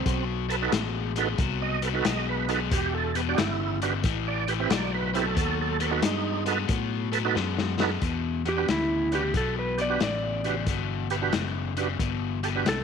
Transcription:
Already playing: C4
0.06 B1 B2 F#3, kick, closed hi-hat
0.49 B2 F#3 A4 B4, closed hi-hat
0.62 D#4 F#4 A4 B4
0.72 A1 B2 G#3, snare, closed hi-hat
1.16 B2 G#3 D#4 F#4 A4 B4, closed hi-hat
1.38 C2 B2 F#3, kick, closed hi-hat
1.62 D#5
1.82 B2 F#3 A4 B4, closed hi-hat
1.94 D#4 F#4 A4 B4
2.05 B1 B2 G#3 D#5, snare, closed hi-hat
2.29 B4
2.48 B2 G#3 D#4 F#4 A4 B4, closed hi-hat
2.71 E1 E2 B2 G4, kick, closed hi-hat
2.94 A4
3.15 E2 B2 G4 B4, closed hi-hat
3.28 D4 F#4 G4 D5
3.38 G1 E2 C#3 E4, snare, closed hi-hat
3.82 E2 C#3 D4 F#4 G4 B4, closed hi-hat
4.04 A1 A2 E3, kick, snare, closed hi-hat
4.28 D5
4.48 A2 E3 G4 B4, closed hi-hat
4.59 C4 E4 G4 B4
4.70 B1 A2 F#3 D5, snare, closed hi-hat
4.94 B4
5.14 A2 F#3 C4 E4 G4 A4 B4, closed hi-hat
5.36 D#2 B2 F#3 A4, kick, closed hi-hat
5.61 A4
5.80 B2 F#3 A4 B4, closed hi-hat
5.91 D#4 F#4 A4 B4
6.02 G2 B2 G#3 D#4, snare, closed hi-hat
6.46 B2 G#3 D#4 F#4 A4 B4, closed hi-hat
6.68 A2 B2 F#3, kick, closed hi-hat
7.12 B2 F#3 A4 B4, closed hi-hat
7.25 D#4 F#4 A4 B4
7.35 F#2 B2 G#3, snare
7.59 snare
7.79 B2 G#3 D#4 F#4 A4 B4, snare
8.02 E2 B2, kick, closed hi-hat
8.45 E2 B2 G4 B4, closed hi-hat
8.57 D4 F#4 G4 B4
8.68 D2 E2 C#3 E4, snare, closed hi-hat
9.11 E2 C#3 D4 F#4 G4 B4, closed hi-hat
9.34 B1 E2 B2 A4, kick, snare, closed hi-hat
9.59 B4
9.78 E2 B2 G4 D5, closed hi-hat
9.89 D4 F#4 G4 B4
10.00 A1 E2 C#3 D5, snare, closed hi-hat
10.44 E2 C#3 D4 F#4 G4 B4, closed hi-hat
10.67 G1 E2 B2, kick, closed hi-hat
11.10 E2 B2 G4 B4, closed hi-hat
11.22 D4 F#4 G4 B4
11.33 F#1 E2 C#3, snare, closed hi-hat
11.77 E2 C#3 D4 F#4 G4 B4, closed hi-hat
11.99 G1 E2 B2, kick, closed hi-hat
12.43 E2 B2 G4 A4, closed hi-hat
12.55 D4 F#4 G4 B4
12.66 C2 E2 C#3 A4, snare, closed hi-hat

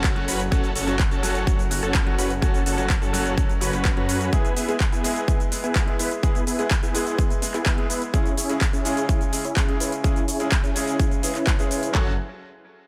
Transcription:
Already playing: F#1 C#4 F#4 A4
0.04 kick, clap, closed hi-hat, cabasa
0.16 F#3 A3 C#4 F#4, closed hi-hat
0.28 F#1 C#4 F#4 B4, open hi-hat, cabasa
0.40 closed hi-hat, cabasa
0.51 F#1 F#3 A3 C#4 F#4 A4, kick, closed hi-hat, cabasa
0.64 closed hi-hat, cabasa
0.76 F#1 C#4 F#4 A4, open hi-hat, cabasa
0.87 F#3 A3 C#4 F#4, closed hi-hat, cabasa
0.99 kick, clap, closed hi-hat, cabasa
1.11 F#1 C#4 F#4 A4, closed hi-hat, cabasa
1.23 F#3 A3 C#4 F#4, open hi-hat, cabasa
1.35 closed hi-hat, cabasa
1.47 F#1 C#4 F#4 A4, kick, closed hi-hat, cabasa
1.59 closed hi-hat, cabasa
1.70 F#3 A3 C#4 F#4, open hi-hat, cabasa
1.83 F#1 C#4 F#4 A4, closed hi-hat, cabasa
1.94 kick, clap, closed hi-hat, cabasa
2.06 F#3 A3 C#4 F#4, closed hi-hat
2.18 F#1 C#4 F#4 B4, open hi-hat, cabasa
2.30 closed hi-hat, cabasa
2.42 F#1 F#3 A3 C#4 F#4 A4, kick, closed hi-hat, cabasa
2.54 closed hi-hat, cabasa
2.66 F#1 C#4 F#4 A4, open hi-hat, cabasa
2.77 F#3 A3 C#4 F#4, closed hi-hat, cabasa
2.90 kick, clap, closed hi-hat, cabasa
3.02 F#1 C#4 F#4 A4, closed hi-hat, cabasa
3.13 F#3 A3 C#4 F#4, open hi-hat, cabasa
3.26 closed hi-hat, cabasa
3.38 F#1, kick, closed hi-hat, cabasa
3.49 closed hi-hat, cabasa
3.61 F#1 F#3 A3 C#4 F#4 B4, open hi-hat, cabasa
3.73 F#1 C#4 F#4 B4, clap, closed hi-hat, cabasa
3.85 kick, clap, closed hi-hat, cabasa
3.96 F#2 F#3 A3 C#4 F#4 B4, closed hi-hat
4.09 open hi-hat, cabasa
4.21 closed hi-hat, cabasa
4.32 G#3 B3 E4 G#4, kick, closed hi-hat, cabasa
4.45 closed hi-hat, cabasa
4.57 B3 E4 G#4, open hi-hat, cabasa
4.68 G#3 B3 E4 G#4, closed hi-hat, cabasa
4.80 kick, clap, closed hi-hat, cabasa
4.92 B3 E4 G#4, closed hi-hat, cabasa
5.03 G#3 B3 E4 G#4, open hi-hat, cabasa
5.16 closed hi-hat, cabasa
5.28 E4 G#4, kick, closed hi-hat, cabasa
5.40 closed hi-hat, cabasa
5.51 G#3 B3 E4 G#4, open hi-hat, cabasa
5.64 B3 E4 G#4, closed hi-hat, cabasa
5.75 kick, clap, closed hi-hat, cabasa
5.87 G#3 B3 E4 G#4, closed hi-hat
5.99 B3 E4 B4, open hi-hat, cabasa
6.11 closed hi-hat, cabasa
6.23 G#3 B3 E4 G#4, kick, closed hi-hat, cabasa
6.35 closed hi-hat, cabasa
6.47 B3 E4 G#4, open hi-hat, cabasa
6.58 G#3 B3 E4 G#4, closed hi-hat, cabasa
6.71 kick, clap, closed hi-hat, cabasa
6.83 B3 E4 G#4, closed hi-hat, cabasa
6.94 G#3 B3 E4 G#4, open hi-hat, cabasa
7.07 closed hi-hat, cabasa
7.18 B3, kick, closed hi-hat, cabasa
7.30 closed hi-hat, cabasa
7.42 G#3 B3 E4 G#4, open hi-hat, cabasa
7.54 B3 E4 G#4, clap, closed hi-hat, cabasa
7.66 kick, clap, closed hi-hat, cabasa
7.77 G#3 B3 E4 G#4, closed hi-hat
7.90 B3 E4 B4, open hi-hat, cabasa
8.02 closed hi-hat, cabasa
8.13 C#3 G#3 C#4 E4 G#4, kick, closed hi-hat, cabasa
8.26 closed hi-hat, cabasa
8.37 C#4 E4 G#4, open hi-hat, cabasa
8.49 C#3 G#3 C#4 E4 G#4, closed hi-hat, cabasa
8.61 kick, clap, closed hi-hat, cabasa
8.73 C#4 E4 G#4, closed hi-hat, cabasa
8.85 C#3 G#3 C#4 E4 G#4, open hi-hat, cabasa
8.97 closed hi-hat, cabasa
9.09 C#4 E4, kick, closed hi-hat, cabasa
9.21 closed hi-hat, cabasa
9.32 C#3 G#3 C#4 E4 G#4, open hi-hat, cabasa
9.45 C#4 E4 G#4, closed hi-hat, cabasa
9.56 kick, clap, closed hi-hat, cabasa
9.68 C#3 G#3 C#4 E4 G#4, closed hi-hat
9.80 C#4 E4 B4, open hi-hat, cabasa
9.92 closed hi-hat, cabasa
10.03 C#3 G#3 C#4 E4 G#4, kick, closed hi-hat, cabasa
10.16 closed hi-hat, cabasa
10.28 C#4 E4 G#4, open hi-hat, cabasa
10.39 C#3 G#3 C#4 E4 G#4, closed hi-hat, cabasa
10.52 kick, clap, closed hi-hat, cabasa
10.64 C#4 E4 G#4, closed hi-hat, cabasa
10.75 C#3 G#3 C#4 E4 G#4, open hi-hat, cabasa
10.88 closed hi-hat, cabasa
10.99 kick, closed hi-hat, cabasa
11.11 closed hi-hat, cabasa
11.23 C#3 G#3 C#4 E4 G#4 B4, open hi-hat, cabasa
11.35 C#4 E4 B4, clap, closed hi-hat, cabasa
11.47 kick, clap, closed hi-hat, cabasa
11.58 C#3 G#3 C#4 E4 G#4 B4, closed hi-hat, cabasa
11.71 open hi-hat, cabasa
11.83 closed hi-hat, cabasa
11.93 F#1 F#3 A3 C#4 F#4 A4, kick, clap

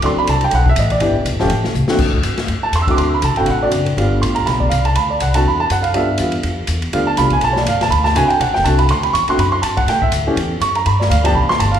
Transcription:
0.02 D2 F#3 C4 D4 A4 C6, ride
0.16 B5, muted upright bass stroke
0.27 C2 A5, hi-hat pedal, ride
0.41 G5, ride
0.51 B1 F#5, ride
0.66 E5, kick
0.76 A1 D#5, hi-hat pedal, ride
0.90 D5, ride
1.00 G1 E3 B3 D4 G4, ride
1.25 B1, hi-hat pedal, ride
1.33 G1
1.39 E1 F3 A3 C#4 G4, snare
1.50 A1, ride
1.64 snare
1.74 C2, hi-hat pedal
1.88 D3 A3 C4 F#4, muted upright bass stroke, snare
1.98 D2, kick, crash
2.13 kick
2.23 G2, hi-hat pedal, ride
2.38 snare, ride
2.48 F#2, ride
2.62 A5, muted upright bass stroke
2.72 E2 C6, hi-hat pedal, ride
2.82 E6
2.87 D3 A3 C4 F#4 D6, kick, ride
2.96 D2 C6, ride
3.14 B5
3.22 C2 A5, hi-hat pedal, ride
3.31 A1
3.36 F#1 D3 A3 C4 F#4 G5, ride
3.45 A1 F5, ride
3.51 F#5
3.62 D3 A3 C4 F#4 D5
3.71 F#1, hi-hat pedal, ride
3.86 ride
3.97 G1 D3 G3 B3 F4, ride
4.22 A1 C6, hi-hat pedal, ride
4.35 A#5, ride
4.46 B1 B5, snare, ride
4.60 D5, kick
4.69 C2 F5, hi-hat pedal, ride
4.85 A5, ride
4.95 D2 B5, ride
5.10 D5
5.20 C2 F#5, hi-hat pedal, ride
5.34 D3 A3 C4 F#4 A5, ride
5.45 E2 B5
5.60 A5
5.70 F#2 F#5, hi-hat pedal, ride
5.82 F5, ride
5.94 G2 D3 G3 B3 F4 E5, ride
6.18 E2 D3 G3 B3 F4, hi-hat pedal, ride
6.32 ride
6.43 F2, ride
6.67 E2, hi-hat pedal, ride
6.82 ride
6.93 D2 D3 G3 B3 F4 F5, ride
7.07 A5
7.17 C2 D3 G3 B3 F4 B5, snare, hi-hat pedal, ride
7.30 G#5, kick, ride
7.41 B1 A5, ride
7.53 C#5, snare
7.58 D5
7.65 G1 F5, hi-hat pedal, ride
7.81 A5, snare, ride
7.90 D2 B5, ride
8.04 A5, snare
8.15 C2 D3 A3 C4 F#4 G#5, hi-hat pedal, ride
8.28 G5, ride
8.40 B1 F#5, ride
8.49 A1
8.54 F#1 G5, snare
8.64 C2 D3 A3 C4 F#4 A5, hi-hat pedal, ride
8.79 B5, ride
8.89 D2 C6, ride
9.03 B5, ride
9.13 E2 C#6, hi-hat pedal, ride
9.27 D3 A3 C4 F#4 C6, muted upright bass stroke, ride
9.38 F#2 B5, ride
9.52 C6
9.62 G2 A5, hi-hat pedal, ride
9.77 F#5, kick, ride
9.86 A2 G5, snare, ride
10.02 E5, kick
10.12 D2, hi-hat pedal, ride
10.27 E3 A3 C#4 G4
10.36 E2, ride
10.60 F#2 C#6, hi-hat pedal, ride
10.75 A#5, ride
10.86 G2 B5, ride
11.00 D5, snare
11.10 D2 F5, hi-hat pedal, ride
11.24 F3 B3 D4 G4 A5, ride
11.34 B1 B5
11.48 C6, muted upright bass stroke, snare
11.59 G1 A5, hi-hat pedal, ride
11.71 F5, ride

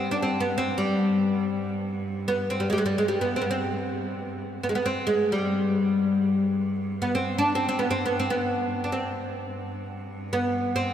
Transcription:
Already playing: G2 C4
0.11 D4
0.23 C4
0.31 G2
0.40 B3
0.58 C4
0.78 G3
2.28 B3
2.50 C4
2.60 G3
2.70 G3 G#3
2.78 G#3
2.86 G3
2.98 G#3
3.08 G3
3.21 B3
3.36 C4
3.42 B3
3.51 C4
4.63 G2 B3
4.69 G#3
4.75 B3
4.86 C4
5.07 G#3
5.32 G3
7.02 B3
7.15 C4
7.38 D4
7.55 C4
7.69 C4
7.79 B3
7.91 C4
8.06 B3
8.20 C4
8.30 B3
8.84 D4
8.92 C4
9.04 G2
10.33 B3
10.76 C4

